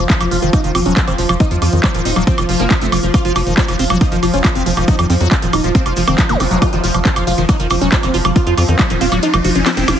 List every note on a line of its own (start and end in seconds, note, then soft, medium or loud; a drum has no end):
0.00 10.00 F3 medium
0.10 0.17 F3 medium
0.10 0.15 F3 medium
0.10 kick loud
0.10 clap loud
0.10 closed hi-hat soft
0.21 0.28 F1 medium
0.21 0.28 F3 medium
0.21 0.26 F3 medium
0.21 closed hi-hat medium
0.21 high woodblock medium
0.31 0.39 F1 loud
0.31 0.37 F3 medium
0.31 0.38 F4 medium
0.31 open hi-hat loud
0.42 0.49 F1 medium
0.42 0.50 D#3 medium
0.42 0.49 F3 medium
0.42 closed hi-hat medium
0.53 0.61 F#3 medium
0.53 0.60 D#4 medium
0.53 kick loud
0.53 closed hi-hat medium
0.53 high woodblock soft
0.64 0.71 F1 medium
0.64 0.72 D#3 medium
0.64 0.71 F3 medium
0.64 closed hi-hat medium
0.75 0.82 F1 loud
0.75 0.82 F3 medium
0.75 0.80 C4 medium
0.75 open hi-hat loud
0.75 high woodblock medium
0.86 0.93 F1 medium
0.86 0.94 F#3 loud
0.86 0.93 C#4 medium
0.86 closed hi-hat medium
0.97 1.04 F3 medium
0.97 kick loud
0.97 clap loud
0.97 closed hi-hat medium
1.07 1.15 F1 medium
1.07 1.13 D#3 medium
1.07 1.15 C4 loud
1.07 closed hi-hat medium
1.07 high woodblock soft
1.18 1.26 F1 loud
1.18 1.26 F3 medium
1.18 1.22 F4 medium
1.18 open hi-hat loud
1.29 1.36 F1 medium
1.29 1.35 F3 medium
1.29 1.36 F3 medium
1.29 closed hi-hat medium
1.29 high woodblock medium
1.40 1.45 F3 medium
1.40 1.47 D#4 loud
1.40 kick loud
1.40 closed hi-hat medium
1.51 1.58 F2 medium
1.51 1.56 F3 medium
1.51 1.58 F3 medium
1.51 closed hi-hat soft
1.62 1.69 F2 loud
1.62 1.67 F3 medium
1.62 1.69 F3 medium
1.62 open hi-hat loud
1.62 high woodblock soft
1.73 1.80 F2 medium
1.73 1.81 D#3 medium
1.73 closed hi-hat soft
1.84 1.91 F3 medium
1.84 1.92 F#3 medium
1.84 kick loud
1.84 clap loud
1.84 closed hi-hat soft
1.84 high woodblock medium
1.94 2.02 D#1 medium
1.94 2.02 D#3 medium
1.94 2.02 F3 medium
1.94 closed hi-hat medium
2.05 2.12 D#1 loud
2.05 2.11 C4 medium
2.05 2.12 D#4 medium
2.05 open hi-hat loud
2.16 2.23 D#1 medium
2.16 2.23 F3 medium
2.16 2.24 F#3 loud
2.16 closed hi-hat soft
2.16 high woodblock soft
2.27 2.32 F3 medium
2.27 2.34 C4 medium
2.27 kick loud
2.27 closed hi-hat medium
2.38 2.45 F1 medium
2.38 2.43 D#3 medium
2.38 2.45 F3 medium
2.38 closed hi-hat medium
2.38 high woodblock medium
2.49 2.56 F1 loud
2.49 2.61 F3 medium
2.49 2.56 F3 medium
2.49 open hi-hat loud
2.60 2.67 F1 medium
2.60 2.67 A#3 medium
2.60 2.65 F#4 medium
2.60 closed hi-hat medium
2.71 2.74 F3 medium
2.71 2.78 F3 medium
2.71 kick loud
2.71 clap loud
2.71 closed hi-hat medium
2.71 high woodblock soft
2.81 2.89 F1 medium
2.81 2.89 A3 medium
2.81 2.87 C4 medium
2.81 closed hi-hat medium
2.92 2.99 F1 medium
2.92 2.98 F3 loud
2.92 2.99 F3 medium
2.92 open hi-hat loud
2.92 high woodblock medium
3.03 3.10 F1 medium
3.03 3.06 F3 medium
3.03 3.10 F3 medium
3.03 closed hi-hat medium
3.14 3.19 F3 medium
3.14 3.21 F4 loud
3.14 kick loud
3.14 closed hi-hat medium
3.14 cabasa medium
3.14 high woodblock soft
3.25 3.32 F1 medium
3.25 3.32 F3 medium
3.25 3.33 F4 medium
3.25 closed hi-hat medium
3.25 cabasa soft
3.36 3.43 F1 loud
3.36 3.41 F3 medium
3.36 3.43 F3 medium
3.36 open hi-hat loud
3.36 cabasa medium
3.36 high woodblock medium
3.47 3.54 F1 medium
3.47 3.55 D#3 medium
3.47 closed hi-hat medium
3.47 cabasa soft
3.58 3.65 F3 medium
3.58 3.65 F#3 medium
3.58 kick loud
3.58 clap loud
3.58 closed hi-hat soft
3.58 cabasa medium
3.68 3.76 F1 medium
3.68 3.76 D#3 medium
3.68 3.75 F3 medium
3.68 closed hi-hat medium
3.68 cabasa soft
3.68 high woodblock soft
3.79 3.86 F1 loud
3.79 3.85 C4 medium
3.79 3.86 F4 medium
3.79 open hi-hat loud
3.79 cabasa loud
3.90 3.97 F1 medium
3.90 3.97 F3 medium
3.90 3.98 F#3 loud
3.90 closed hi-hat soft
3.90 cabasa soft
3.90 high woodblock medium
4.01 4.06 F3 medium
4.01 4.08 D#4 medium
4.01 kick loud
4.01 closed hi-hat medium
4.01 cabasa medium
4.11 4.19 F1 medium
4.11 4.17 D#3 medium
4.11 4.19 F3 medium
4.11 closed hi-hat medium
4.11 cabasa soft
4.23 4.30 F1 loud
4.23 4.30 F3 medium
4.23 4.26 F4 medium
4.23 open hi-hat loud
4.23 cabasa medium
4.23 high woodblock soft
4.33 4.41 F1 medium
4.33 4.39 F3 medium
4.33 4.41 C#4 medium
4.33 closed hi-hat soft
4.33 cabasa soft
4.44 4.50 F3 medium
4.44 4.52 F3 medium
4.44 kick loud
4.44 clap loud
4.44 closed hi-hat medium
4.44 cabasa medium
4.44 high woodblock medium
4.55 4.62 F1 medium
4.55 4.62 C4 loud
4.55 4.63 F4 medium
4.55 closed hi-hat medium
4.55 cabasa soft
4.66 4.73 F1 loud
4.66 4.72 F3 medium
4.66 4.73 F3 medium
4.66 open hi-hat loud
4.66 cabasa loud
4.77 4.84 F1 medium
4.77 4.85 D#3 medium
4.77 4.84 F3 medium
4.77 closed hi-hat medium
4.77 cabasa soft
4.77 high woodblock soft
4.88 4.96 F#3 medium
4.88 4.95 D#4 loud
4.88 kick loud
4.88 closed hi-hat medium
4.88 cabasa soft
4.99 5.06 F2 medium
4.99 5.07 D#3 medium
4.99 5.06 F3 medium
4.99 closed hi-hat medium
4.99 cabasa soft
4.99 high woodblock medium
5.10 5.17 F2 loud
5.10 5.17 F3 medium
5.10 5.15 C4 medium
5.10 open hi-hat loud
5.10 cabasa medium
5.20 5.28 F2 medium
5.20 5.28 F#3 loud
5.20 closed hi-hat medium
5.20 cabasa soft
5.31 5.37 F3 medium
5.31 5.39 F3 medium
5.31 kick loud
5.31 clap loud
5.31 closed hi-hat medium
5.31 cabasa medium
5.31 high woodblock soft
5.42 5.49 D#1 medium
5.42 5.48 D#3 medium
5.42 5.49 F3 medium
5.42 closed hi-hat medium
5.42 cabasa soft
5.53 5.60 D#1 loud
5.53 5.60 D#4 medium
5.53 5.56 F4 medium
5.53 open hi-hat loud
5.53 cabasa medium
5.53 high woodblock medium
5.64 5.71 D#1 medium
5.64 5.69 F3 medium
5.64 5.71 F3 medium
5.64 closed hi-hat medium
5.64 cabasa soft
5.75 5.80 F3 medium
5.75 5.82 C4 medium
5.75 kick loud
5.75 closed hi-hat medium
5.75 cabasa soft
5.86 5.93 F1 medium
5.86 5.93 F3 medium
5.86 5.94 F4 medium
5.86 closed hi-hat medium
5.86 cabasa soft
5.86 high woodblock soft
5.96 6.04 F1 loud
5.96 6.02 F3 medium
5.96 6.04 F3 medium
5.96 open hi-hat loud
5.96 cabasa medium
6.08 6.15 F1 medium
6.08 6.15 D#3 medium
6.08 6.15 C4 medium
6.08 closed hi-hat medium
6.08 cabasa soft
6.08 high woodblock medium
6.18 6.25 F3 medium
6.18 6.26 F#3 medium
6.18 kick loud
6.18 clap loud
6.18 closed hi-hat medium
6.18 cabasa soft
6.29 6.36 F1 medium
6.29 6.37 D#3 medium
6.29 6.36 A#3 loud
6.29 closed hi-hat medium
6.29 zap medium
6.29 cabasa soft
6.40 6.47 F1 loud
6.40 6.47 F3 medium
6.40 6.45 C4 medium
6.40 open hi-hat loud
6.40 cabasa medium
6.40 high woodblock soft
6.51 6.58 F1 medium
6.51 6.58 F3 medium
6.51 6.59 F#3 loud
6.51 closed hi-hat medium
6.51 cabasa soft
6.62 6.69 F4 loud
6.62 kick loud
6.62 closed hi-hat medium
6.62 riser medium
6.62 cabasa soft
6.62 high woodblock medium
6.73 6.80 F1 medium
6.73 6.78 D#3 medium
6.73 6.80 F3 medium
6.73 closed hi-hat medium
6.73 cabasa soft
6.84 6.91 F1 loud
6.84 6.91 F3 medium
6.84 6.87 F4 medium
6.84 open hi-hat loud
6.84 cabasa medium
6.95 7.02 F1 medium
6.95 7.00 F3 medium
6.95 closed hi-hat medium
6.95 cabasa soft
6.95 high woodblock soft
7.05 7.12 F3 medium
7.05 7.11 F3 medium
7.05 kick loud
7.05 clap loud
7.05 closed hi-hat medium
7.05 cabasa soft
7.16 7.23 F1 medium
7.16 7.23 F3 medium
7.16 7.24 F4 medium
7.16 closed hi-hat medium
7.16 cabasa soft
7.16 high woodblock medium
7.27 7.34 F1 loud
7.27 7.32 F3 medium
7.27 7.34 F4 medium
7.27 open hi-hat loud
7.27 cabasa medium
7.38 7.45 F1 medium
7.38 7.46 D#3 medium
7.38 7.45 F3 medium
7.38 closed hi-hat medium
7.38 cabasa soft
7.49 7.57 F#3 medium
7.49 7.56 D#4 medium
7.49 kick loud
7.49 closed hi-hat medium
7.49 cabasa soft
7.49 high woodblock soft
7.59 7.67 F1 medium
7.59 7.68 D#3 medium
7.59 7.67 F3 medium
7.59 closed hi-hat medium
7.59 cabasa soft
7.70 7.78 F1 loud
7.70 7.78 F3 medium
7.70 7.76 C4 medium
7.70 open hi-hat loud
7.70 cabasa medium
7.70 high woodblock medium
7.81 7.89 F1 medium
7.81 7.89 F#3 loud
7.81 7.89 C#4 medium
7.81 closed hi-hat medium
7.81 cabasa soft
7.92 7.98 F3 medium
7.92 7.99 F3 medium
7.92 kick loud
7.92 clap loud
7.92 closed hi-hat medium
7.92 cabasa medium
8.03 8.10 F1 medium
8.03 8.08 D#3 medium
8.03 8.10 C4 medium
8.03 closed hi-hat medium
8.03 cabasa soft
8.03 high woodblock soft
8.14 8.21 F1 loud
8.14 8.21 F3 medium
8.14 8.17 F4 medium
8.14 open hi-hat loud
8.14 cabasa medium
8.25 8.32 F1 medium
8.25 8.32 F3 medium
8.25 8.30 F3 medium
8.25 closed hi-hat medium
8.25 cabasa soft
8.25 high woodblock medium
8.36 8.41 F3 medium
8.36 8.43 F4 loud
8.36 kick loud
8.36 closed hi-hat medium
8.36 cabasa soft
8.47 8.54 F2 medium
8.47 8.54 F3 medium
8.47 8.55 F4 medium
8.47 closed hi-hat medium
8.47 cabasa soft
8.58 8.65 F2 loud
8.58 8.65 F3 medium
8.58 8.63 F3 medium
8.58 open hi-hat loud
8.58 cabasa medium
8.58 high woodblock soft
8.68 8.75 F2 medium
8.68 8.76 D#3 medium
8.68 closed hi-hat medium
8.68 cabasa soft
8.79 8.86 F3 medium
8.79 8.87 F#3 medium
8.79 kick loud
8.79 clap loud
8.79 closed hi-hat medium
8.79 cabasa soft
8.79 high woodblock medium
8.90 8.97 D#1 medium
8.90 8.98 D#3 medium
8.90 8.97 F3 medium
8.90 closed hi-hat medium
8.90 cabasa soft
9.01 9.08 D#1 loud
9.01 9.06 C4 medium
9.01 9.08 F4 medium
9.01 open hi-hat loud
9.01 cabasa medium
9.12 9.19 D#1 medium
9.12 9.19 F3 medium
9.12 9.20 F#3 loud
9.12 closed hi-hat medium
9.12 cabasa soft
9.12 high woodblock soft
9.22 9.28 F3 medium
9.22 9.30 D#4 medium
9.22 closed hi-hat medium
9.22 cabasa soft
9.33 9.41 F1 medium
9.33 9.39 D#3 medium
9.33 9.41 F3 medium
9.33 closed hi-hat medium
9.33 cabasa soft
9.33 high woodblock medium
9.44 9.52 F1 loud
9.44 9.52 F3 medium
9.44 9.50 F#4 medium
9.44 open hi-hat loud
9.44 cabasa medium
9.55 9.62 F1 medium
9.55 9.61 F3 medium
9.55 9.62 C#4 medium
9.55 closed hi-hat medium
9.55 cabasa soft
9.66 9.73 F3 medium
9.66 9.71 C4 loud
9.66 snare medium
9.66 clap loud
9.66 closed hi-hat medium
9.66 cabasa medium
9.66 high woodblock soft
9.77 9.84 F1 medium
9.77 9.85 F3 medium
9.77 9.84 C4 loud
9.77 snare medium
9.77 closed hi-hat medium
9.77 cabasa soft
9.88 9.95 F1 loud
9.88 9.95 F3 medium
9.88 9.93 F3 medium
9.88 snare medium
9.88 open hi-hat loud
9.88 cabasa medium
9.88 high woodblock medium